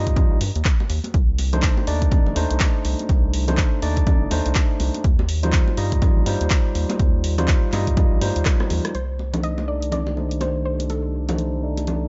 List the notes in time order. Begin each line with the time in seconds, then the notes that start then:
Already playing: G2 G3 D#4 F4 D#5
0.07 kick, closed hi-hat
0.16 kick, closed hi-hat, low conga
0.31 A#1
0.41 G2, open hi-hat, muted conga, high conga
0.56 D#2, closed hi-hat
0.65 kick, clap, closed hi-hat
0.80 muted conga
0.90 D#2, open hi-hat
1.04 closed hi-hat, high conga
1.14 C2, kick, closed hi-hat
1.39 open hi-hat, muted conga
1.53 A3 D4 D#4 C5, closed hi-hat, low conga
1.62 kick, clap, closed hi-hat
1.77 muted conga
1.87 D#2 A3 D4 D#4 D5, open hi-hat
2.02 kick, closed hi-hat
2.11 kick, closed hi-hat, low conga
2.26 G1, muted conga
2.35 D#2 A3 D4 D#4 C5, open hi-hat, high conga
2.51 C2, closed hi-hat
2.60 kick, clap, closed hi-hat, muted conga
2.85 C2, open hi-hat
2.99 closed hi-hat, high conga
3.09 C2, kick, closed hi-hat, muted conga
3.34 open hi-hat
3.48 A3 D4 D#4 C5, closed hi-hat, muted conga, low conga
3.57 kick, clap, closed hi-hat
3.82 D#2 A3 D4 D#4 D5, open hi-hat
3.96 kick, closed hi-hat, muted conga
4.07 kick, closed hi-hat, low conga
4.21 G1
4.31 D#2 A3 D4 D#4 C5, open hi-hat, muted conga, high conga
4.46 C2, closed hi-hat
4.55 kick, clap, closed hi-hat
4.80 C2, open hi-hat, muted conga
4.94 closed hi-hat, high conga
5.04 D#2, kick, closed hi-hat
5.19 muted conga
5.29 open hi-hat
5.43 G3 D#4 F4 C5, closed hi-hat, low conga
5.52 kick, clap, closed hi-hat
5.68 muted conga
5.77 G2 G3 D#4 F4 D#5, open hi-hat
5.92 kick, closed hi-hat
6.02 kick, closed hi-hat, muted conga, low conga
6.16 A#1
6.26 G2 G3 D#4 F4 C5, open hi-hat, high conga
6.41 D#2, closed hi-hat
6.50 kick, clap, closed hi-hat, muted conga
6.75 D#2, open hi-hat
6.89 closed hi-hat, muted conga, high conga
6.99 D#2, kick, closed hi-hat
7.24 open hi-hat
7.38 G3 D#4 F4 C5, closed hi-hat, muted conga, low conga
7.48 kick, clap, closed hi-hat
7.72 G2 G3 D#4 F4 D#5, clap, open hi-hat, muted conga
7.87 kick, closed hi-hat
7.97 kick, closed hi-hat, low conga
8.12 A#1
8.21 G2 G3 D#4 F4 C5, open hi-hat, muted conga, high conga
8.36 D#2, closed hi-hat
8.45 kick, cross-stick, clap, closed hi-hat
8.60 cross-stick, muted conga
8.70 D#2, open hi-hat, low conga
8.85 cross-stick, closed hi-hat, high conga
8.95 C2 D#3 G4 A4 C5 D5, closed hi-hat
9.19 muted conga
9.33 A3 D4 D#4 C5, closed hi-hat, low conga
9.43 D#5, closed hi-hat
9.58 muted conga
9.68 A3 D4 D#4 D5
9.82 closed hi-hat
9.92 D5, closed hi-hat, low conga
10.07 muted conga
10.16 A3 D4 D#4 C5, high conga
10.31 closed hi-hat
10.41 C5, closed hi-hat, muted conga
10.65 C5
10.80 closed hi-hat, high conga
10.90 A4, closed hi-hat, muted conga
11.29 A3 D4 D#4 C5, closed hi-hat, muted conga, low conga
11.38 closed hi-hat
11.63 A3 D4 D#4 D5
11.77 closed hi-hat, muted conga
11.87 closed hi-hat, low conga